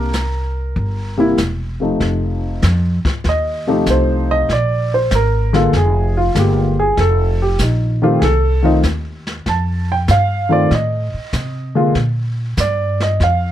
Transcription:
Already playing: C2 G3 A#3 D4 A#4
0.13 snare, hi-hat pedal
0.76 G1, brush sweep, kick
1.17 C3 G3 A#3 E4
1.38 E1, snare, hi-hat pedal
1.80 C3 F3 A3 D#4
2.00 F1, brush sweep, kick, snare
2.62 F2, kick, snare, hi-hat pedal
3.05 muted upright bass stroke, kick, snare
3.24 D#2, brush sweep, kick, snare
3.29 D#5
3.67 C3 F3 A3 D#4 G4
3.86 C2, kick, snare, hi-hat pedal
3.90 C5
4.31 D#5
4.49 A#1 D5, brush sweep, kick, snare
4.94 C5
5.11 G#1, kick, snare, hi-hat pedal
5.15 A#4
5.53 D3 G#3 A#3 F4 A4, snare
5.73 F1 G#4, brush sweep, kick, snare
6.17 F4
6.35 G1 D3 G#3 A#3 F4, kick, snare, hi-hat pedal
6.39 G4
6.80 G#4
6.97 F1 A4, brush sweep, kick, snare
7.42 G4
7.59 A#1 D#4, kick, snare, hi-hat pedal
8.02 D#3 A3 C4 F4 G4
8.19 C2 G#4, brush sweep, kick, snare
8.24 A4
8.63 D#3 A3 C4 D#4 F4
8.83 D#2, kick, snare, hi-hat pedal
9.27 snare
9.46 F2 A5, brush sweep, kick, snare
9.92 G5
10.08 G2 F5, kick, snare, hi-hat pedal
10.49 D#3 A3 C4 F4 D5
10.71 A2 D#5, brush sweep, kick, snare
11.14 muted upright bass stroke
11.33 C3, kick, snare, hi-hat pedal
11.75 D3 G#3 A#3 F4
11.95 A#2, brush sweep, kick, snare
12.57 G2 D5, kick, snare, hi-hat pedal
13.00 D#5, snare
13.20 F2 F5, brush sweep, kick, snare

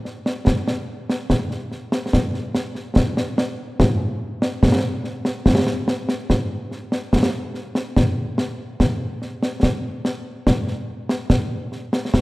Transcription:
0.05 snare
0.26 snare
0.47 concert bass drum, snare
0.68 snare
1.10 snare
1.30 concert bass drum, snare
1.51 snare
1.72 snare
1.92 snare
2.13 concert bass drum, snare
2.34 snare
2.55 snare
2.75 snare
2.96 concert bass drum, snare
3.17 snare
3.38 snare
3.80 concert bass drum, snare
4.42 snare
4.63 concert bass drum, snare
5.04 snare
5.25 snare
5.46 concert bass drum, snare
5.67 snare
5.88 snare
6.09 snare
6.30 concert bass drum, snare
6.72 snare
6.92 snare
7.13 concert bass drum, snare
7.54 snare
7.75 snare
7.96 concert bass drum, snare
8.38 snare
8.80 concert bass drum, snare
9.22 snare
9.43 snare
9.63 concert bass drum, snare
10.05 snare
10.47 concert bass drum, snare
10.67 snare
11.09 snare
11.30 concert bass drum, snare
11.72 snare
11.93 snare
12.14 concert bass drum, snare

